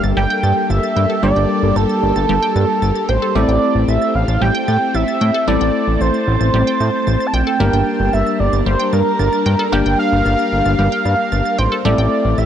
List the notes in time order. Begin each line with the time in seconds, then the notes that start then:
Already playing: G3 A#3 D4 G4 A4
0.04 G1 A6
0.17 G1 G3 G5
0.30 G5
0.43 G2 A6
0.70 G1 E5 A6
0.83 A6
0.96 G2 G5
1.10 A4
1.23 G1 G3 A#3 D4 G4 D5
1.36 G1 G5
1.63 G1
1.76 G1 A4 A6
1.89 A6
2.03 G1
2.16 G1 A6
2.29 G1 G3
2.42 G5
2.56 G2 A6
2.82 G1 A6
2.95 A6
3.09 A1 C5 G5
3.22 A4
3.35 A1 G3 A3 C4 E4 A4 D5
3.48 A1 G5
3.75 A1
3.88 A1 E5 A6
4.02 A6
4.15 A1 F5
4.28 A1 A6
4.41 A1 G3 G5
4.55 G5
4.68 A2 A6
4.94 A1 E5 A6
5.08 A6
5.21 A2 G5
5.34 A4
5.48 A1 G3 A3 C4 E4 A4 D5 A5
5.61 A1 G5
5.88 A1
6.01 A1 C5 A6
6.14 A6
6.27 A1
6.41 A1 A6
6.54 A1 G3
6.67 G5
6.80 A2 A6
7.07 A1 A6
7.20 A6
7.27 A5
7.33 A#1 G5
7.47 A4
7.60 G1 G3 A#3 D4 G4 A#4
7.73 G1 G5
8.00 G1
8.13 G1 E5 A6
8.26 A6
8.40 G1 D5
8.53 G1 A6
8.66 G1 G3 C5
8.79 G5
8.93 G2 A#4 A6
9.19 G1 A6
9.33 A6
9.46 G2 G5
9.59 A4
9.72 G1 G3 A#3 D4 G4 A#4 G5
9.86 G1 G5
9.99 F5
10.12 G1
10.26 G1 A6
10.39 A6
10.52 G1
10.65 G1 A6
10.79 G1 G3
10.92 G5
11.05 G2 A6
11.32 G1 A6
11.45 A6
11.58 A1 C5 G5
11.72 A4
11.85 A1 G3 A3 C4 E4 G4 A4 D5
11.98 A1 G5
12.25 A1
12.38 A1 E5 A6